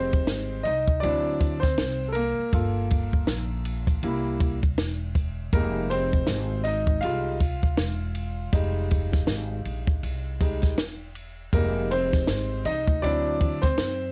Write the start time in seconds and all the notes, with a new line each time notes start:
Already playing: F1 G3 G#3 C4 D#4 C5
0.13 kick, ride
0.27 G#1, snare, hi-hat pedal, ride
0.63 C2 D#4 D#5, ride
0.88 kick
1.00 D2 F#3 C4 D4 E4 D5, ride
1.41 kick, ride
1.60 C4 C5, kick, snare
1.78 C2, snare, hi-hat pedal, ride
2.08 A4
2.13 A#3 A#4, ride
2.39 muted upright bass stroke
2.53 G1 A#3 F4 A4, kick, ride
2.91 kick, ride
3.13 kick
3.27 A#1, snare, hi-hat pedal, ride
3.65 ride
3.87 kick, ride
4.03 C2 G3 A#3 E4, ride
4.40 kick, ride
4.63 kick
4.78 E1, snare, hi-hat pedal, ride
5.15 kick, ride
5.53 F1 G3 G#3 A#3 D#4 A#4, kick, ride
5.90 C4 C5, ride
6.13 kick
6.27 G#1, snare, hi-hat pedal, ride
6.64 D#4 D#5, ride
6.87 kick
7.01 C2 G3 G#3 D#4 F4 F5, ride
7.40 kick, ride
7.63 kick
7.77 E1, snare, hi-hat pedal, ride
8.15 ride
8.53 F1 G3 G#3 D#4, kick, ride
8.91 kick, ride
9.12 kick, snare
9.27 G#1, snare, hi-hat pedal, ride
9.65 A#1, ride
9.87 kick
10.03 C2, ride
10.40 G3 G#3 D#4, kick, ride
10.62 kick, snare, ride
10.78 E1, snare, hi-hat pedal, ride
11.15 ride
11.53 F1 G3 G#3 A#3 D#4 A#4, kick, ride, shaker
11.76 shaker
11.91 C4 C5, ride, shaker
12.12 kick, snare, shaker
12.27 G#1, snare, hi-hat pedal, ride, shaker
12.50 shaker
12.65 C2 D#4 D#5, ride, low conga, shaker
12.88 kick, high conga, shaker
13.02 D2 F#3 C4 D4 E4 D5, ride, shaker
13.25 shaker
13.40 kick, ride, low conga, shaker
13.62 C4 C5, kick, snare, ride, high conga, shaker
13.78 F#2, snare, hi-hat pedal, ride, shaker
14.00 shaker